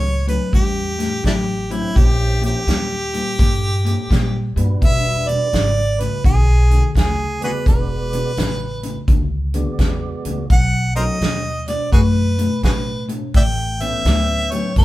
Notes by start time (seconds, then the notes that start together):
Already playing: C#2 A2 F#3 C#5
0.27 A2 F#3 B4, closed hi-hat
0.53 E2 A2 G3 G4, kick, closed hi-hat
0.99 A2 G3, snare, closed hi-hat
1.24 A1 A2 F#3 D4 E4 G4, kick, snare, closed hi-hat
1.70 A2 F#3 C4 C#4 E4 G5, closed hi-hat
1.95 A#1 A#2 F3 G4, kick, closed hi-hat
2.42 A#2 F3 G4, closed hi-hat
2.67 D#2 A#2 G3, snare, closed hi-hat
3.14 A#2 G3, closed hi-hat
3.39 G2 A#2 G#3, kick, snare, closed hi-hat
3.85 A#2 G#3, closed hi-hat
4.10 A#2 G3, kick, snare, closed hi-hat
4.56 G2 A#2 G3 D4 F#4 B4, closed hi-hat
4.81 E1 E2 B2 E5, kick, closed hi-hat
5.28 E2 B2 D5, closed hi-hat
5.53 G#1 E2 C#3, snare, closed hi-hat
6.00 E2 C#3 B4, closed hi-hat
6.24 B1 E2 D3 G#4, kick, closed hi-hat
6.71 E2 D3, closed hi-hat
6.95 D2 E2 C#3 G#4, kick, snare, closed hi-hat
7.41 E2 C#3 G#3 B3 F#4 G#4 B4 D5, closed hi-hat
7.66 E1 E2 B2 B4, kick, closed hi-hat
8.13 E2 B2, closed hi-hat
8.37 A1 E2 C#3, snare, closed hi-hat
8.83 E2 C#3, closed hi-hat
9.08 C#2 E2 D3, kick, closed hi-hat
9.54 E2 D3 G#3 B3 F#4 D5, closed hi-hat
9.79 E2 C#3, kick, snare, closed hi-hat
10.25 C#2 E2 C#3, closed hi-hat
10.50 B1 B2 F#3 F#5, kick, closed hi-hat
10.96 B2 F#3 A3 C#4 D#4 F#4 A#4 C5 D#5, closed hi-hat
11.21 D#2 B2 G#3, snare, closed hi-hat
11.68 B2 G#3 D5, closed hi-hat
11.92 F#2 B2 A3 F#4 G#4 B4, kick, closed hi-hat
12.39 B2 A3, closed hi-hat
12.63 A2 B2 G#3 F#4 G#4 B4, kick, snare, closed hi-hat
13.09 B2 G#3, closed hi-hat
13.34 A1 A2 E3 D5 E5 G5, kick, closed hi-hat
13.80 A2 E3 B3 C#4 E4 E5 G5, closed hi-hat
14.05 D2 A2 F#3, snare, closed hi-hat
14.51 A2 F#3 C#5, closed hi-hat
14.76 F#2 A2 G3 B3 C#4 E4 A4 B4, kick, snare, closed hi-hat